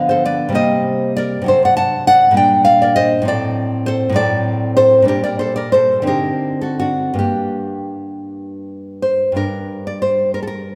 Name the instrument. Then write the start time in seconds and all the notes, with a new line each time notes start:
nylon-string guitar
Already playing: D3 F3 B3
0.09 A4 C5
0.25 B4 D5
0.49 C3 G3 A#3
0.55 C5 D#5
1.17 A#4 D5
1.42 C3 F#3
1.46 D4 A4 C5
1.65 D5 F#5
1.77 F#5 A5
2.07 D5 F#5
2.31 A#2 G3 D4
2.37 D5 G5
2.65 D5 F5
2.82 A#4 D5
2.96 C5 D#5
3.22 A2 F#3 C4
3.28 A4 D5
3.86 A4 C5
4.09 A2 F#3
4.14 C4 A4 D5
4.77 A4 C5
5.02 A#2 G3 D4
5.08 G4 A#4
5.24 A#4 D5
5.39 A4 C5
5.56 A#4 D5
5.72 A4 C5
6.02 D3 C4
6.07 D#4 G4 A#4
6.61 F#4 A4
6.80 D4 F#4
7.14 G2 A#3
7.19 D4 G4
9.02 C5
9.32 G2 G3 D4
9.37 A#4
9.87 D5
10.02 C5
10.34 A#4
10.43 A4
10.47 A#4